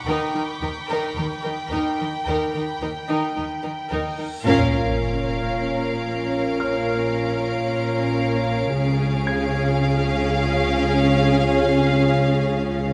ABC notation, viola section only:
X:1
M:4/4
L:1/16
Q:1/4=56
K:Bbm
V:1 name="Viola section"
E E E E E E E E E E E E E E E E | D16 | D16 |]